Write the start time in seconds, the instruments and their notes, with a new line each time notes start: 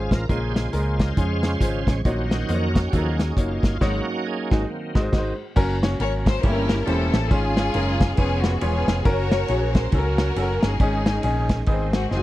Already playing: grand piano G#3 C#4 F4 C5, tonewheel organ F4 G#4
0.11 fingered electric bass A1, tonewheel organ A#4, kick, snare, closed hi-hat
0.29 fingered electric bass A#1, grand piano A#2 G#3 C#4 F4 A#4, tonewheel organ C#3 G#3 F4 G#4 C5, kick, closed hi-hat
0.50 tonewheel organ G4
0.56 tonewheel organ G#4, snare, closed hi-hat
0.73 fingered electric bass C#2, grand piano G#3 C#4 F4 A#4, tonewheel organ G#4, closed hi-hat
0.99 tonewheel organ A#4, kick, snare, closed hi-hat
1.17 fingered electric bass F2, grand piano G#3 C#4 F4 G#4, tonewheel organ C#4 F4 G#4, kick, closed hi-hat
1.43 tonewheel organ G#3 C#4 F4, snare, closed hi-hat
1.61 fingered electric bass G#1, grand piano G#3 C#4 F4 C5, kick, closed hi-hat
1.87 fingered electric bass A1, tonewheel organ C#5, kick, snare, closed hi-hat
2.05 fingered electric bass A#1, grand piano A#2 A#3 D#4 F#4 C#5, tonewheel organ D#3 F#3 C#4 D#4 F#4 C5, kick, closed hi-hat
2.31 snare, closed hi-hat
2.48 fingered electric bass F2, grand piano A#3 D#4 F#4 C5, tonewheel organ C#4 F#4 A#4, closed hi-hat
2.54 grand piano C#5
2.75 kick, snare, closed hi-hat
2.88 tonewheel organ G4
2.93 fingered electric bass D#2, tonewheel organ F3 F#3 C#4 D#4 G#4, grand piano A#3 D#4 F#4 A4, kick, closed hi-hat
2.98 grand piano A#4
3.19 snare, closed hi-hat
3.37 fingered electric bass F#1, grand piano A#3 D#4 F#4 C#5, tonewheel organ F4, kick, closed hi-hat
3.63 fingered electric bass G1, tonewheel organ F4, kick, snare, closed hi-hat
3.81 fingered electric bass G#1, grand piano G#2 G#3 D#4 F#4 C#5, tonewheel organ F#3 A#3 C#4 D#4 F#4, kick, snare, crash
4.26 tonewheel organ G#4
4.51 fingered electric bass G#1, tonewheel organ D#3 F#3 C4, grand piano G#3 D#4 F#4 G#4, kick, snare
4.69 tonewheel organ F#3 A#3 C4
4.95 fingered electric bass G#1, grand piano G#2 G#3 D#4 F#4, kick, snare
5.01 grand piano C5
5.12 fingered electric bass G#1, grand piano G#3 D#4 F#4, kick, snare, crash
5.18 grand piano C5
5.56 fingered electric bass F#1, tonewheel organ F#3 A#3 C#4, grand piano C#4 F#4 A#4, kick, crash
5.83 grand piano C#4 F#4 C#5, snare, ride
6.00 fingered electric bass G#1, grand piano C#4 F#4 A#4, string section C#5, ride
6.26 string section C5, kick, snare, ride
6.43 fingered electric bass G1, grand piano G2 A3 C#4 E4 G4 C#5, tonewheel organ E3 G3 G4, string section C#4 E4 A#4, kick, ride
6.49 grand piano A#3
6.69 snare, ride
6.86 fingered electric bass E1, grand piano A#3 C#4 E4 G4 C5, string section C#4 E4 A4, ride
7.14 fingered electric bass A1, snare, ride
7.31 fingered electric bass G#1, grand piano G#2 C#4 F4 G#4, tonewheel organ G#3 F4, string section C#4 F4 G#4, kick, ride
7.57 grand piano C#4 F4 G#4, snare, ride
7.74 fingered electric bass F#1, grand piano C#4 F4 A#4, ride
8.00 kick, snare, ride
8.17 fingered electric bass F1, tonewheel organ F3 B3 G#4, string section B3 C#4 G#4, grand piano B3 C#4 F4 G#4 C#5, kick, ride
8.43 string section F#4, snare, ride
8.61 fingered electric bass E1, grand piano B3 C#4 F4 G#4 C#5, string section B3 C#4 G#4, ride
8.88 fingered electric bass F1, snare, ride
9.05 fingered electric bass F#1, tonewheel organ F#3 A#3, grand piano C#4 F#4 A#4, string section F#4 A#4 C#5, kick, ride
9.31 grand piano C#4 F#4 A#4, snare, ride
9.48 fingered electric bass A#1, grand piano C#4 F#4 G#4, ride
9.75 string section C5, kick, snare, ride
9.92 fingered electric bass C#2, grand piano C#4 F#4 A4, string section C#4 F#4 A#4, kick, ride
9.99 grand piano A#4
10.18 snare, ride
10.36 fingered electric bass F#1, grand piano C#4 F#4 A4, ride
10.42 grand piano A#4
10.62 fingered electric bass G1, string section C#4 D#4 G#4, snare, ride
10.80 fingered electric bass G#1, grand piano G#2 C#4 D#4 G#4, tonewheel organ D#3 G#3, kick, ride
11.06 grand piano C#4 D#4 G#4, snare, ride
11.23 fingered electric bass A#1, grand piano C#4 D#4 G#4, ride
11.49 kick, snare, ride
11.66 fingered electric bass G#1, grand piano G#2 B3 D#4 G#4, tonewheel organ C4, kick, ride
11.72 grand piano C4
11.93 string section F#4, snare, ride
12.11 fingered electric bass F#1, grand piano C4 D#4 F4, string section G#4, snare
12.17 grand piano F#4